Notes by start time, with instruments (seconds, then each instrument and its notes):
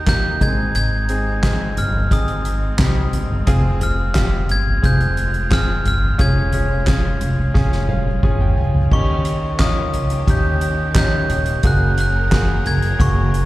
Already playing: upright bass D#2, string section D#3 D#4 G4 A#4, grand piano D#3 A#3 D#4 G4 G#4 A#4
0.06 grand piano A#3 D#4 G4, glockenspiel G6, kick, snare, clap, closed hi-hat
0.40 upright bass G#1, grand piano G#2 A#3 D#4 G#4, string section G#3 C4, glockenspiel G#6, kick, closed hi-hat
0.47 grand piano C4
0.75 upright bass G#1, glockenspiel G#6, closed hi-hat
1.09 grand piano C4 D#4 G#4, closed hi-hat
1.43 grand piano C4 D#4 G#4, kick, snare, clap, closed hi-hat
1.77 upright bass G1, glockenspiel F6, closed hi-hat
1.94 floor tom
2.11 upright bass G#1, grand piano C4 D#4 G#4, glockenspiel D#6, kick, closed hi-hat
2.28 closed hi-hat
2.45 closed hi-hat
2.79 upright bass C2, grand piano C4 D#4 G4, kick, snare, clap, closed hi-hat
3.13 upright bass G1, closed hi-hat, floor tom
3.30 floor tom
3.47 upright bass F1, grand piano C4 F4 G#4, string section F4, kick, closed hi-hat
3.80 grand piano C4 F4 G#4, glockenspiel F6, closed hi-hat, floor tom
4.14 grand piano C4 F4 G4, kick, snare, clap, closed hi-hat
4.49 upright bass G1, glockenspiel G#6, closed hi-hat
4.67 floor tom
4.82 upright bass F1, grand piano C4 F4 G#4, glockenspiel G6, kick, closed hi-hat
5.01 closed hi-hat
5.17 closed hi-hat
5.34 closed hi-hat
5.50 grand piano C4 F4 G#4, glockenspiel F6, kick, snare, clap, closed hi-hat
5.86 upright bass G1, glockenspiel F6, closed hi-hat, floor tom
6.02 floor tom
6.18 upright bass F1, grand piano C#4 F4 G#4, string section C#4, glockenspiel G#6, kick, closed hi-hat
6.53 grand piano C#4 F4 G#4, closed hi-hat, floor tom
6.87 grand piano C#4 F4 G#4, kick, snare, clap, closed hi-hat
7.21 upright bass F1, closed hi-hat
7.38 floor tom
7.54 upright bass F1, grand piano C#4 F4 G#4, kick, snare
7.72 snare
7.89 grand piano F5, high tom
8.06 high tom
8.23 upright bass G1, grand piano C#4 F4 G#4 G#5, kick, mid tom
8.40 grand piano G5, mid tom
8.57 upright bass C#2, grand piano G#5, floor tom
8.75 floor tom
8.91 upright bass D#2, grand piano D#3 C#4 D#4 G4, string section D#3 A#3 C#4 G4, glockenspiel C#6, kick, crash
9.25 closed hi-hat
9.59 grand piano C#4 D#4 F4, glockenspiel D#6, kick, snare, clap, closed hi-hat
9.94 upright bass C#2, closed hi-hat, floor tom
10.10 closed hi-hat
10.27 upright bass D#2, grand piano C#4 D#4 G4, glockenspiel G6, kick, closed hi-hat
10.61 closed hi-hat
10.95 grand piano C#4 D#4 G4, glockenspiel G6, kick, snare, clap, closed hi-hat
11.30 upright bass D#1, closed hi-hat
11.46 closed hi-hat
11.63 upright bass F#1, string section F#3 G#4 A#4, grand piano A#3 F#4 G#4, glockenspiel F#6, kick, closed hi-hat
11.98 glockenspiel F#6, closed hi-hat
12.31 grand piano A#3 F#4 G#4, kick, snare, clap, closed hi-hat
12.65 upright bass F#1, glockenspiel G#6, closed hi-hat, floor tom
12.82 closed hi-hat
12.99 upright bass F#1, grand piano A#3 F#4 G#4, glockenspiel C#6, kick, closed hi-hat
13.34 closed hi-hat